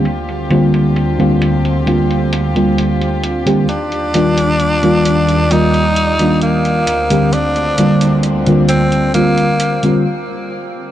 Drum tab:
HH |xxxxxxxxxxxxxxxx|xxxxxxxxxxxxxxxx|xxxxxxxxxxxx----|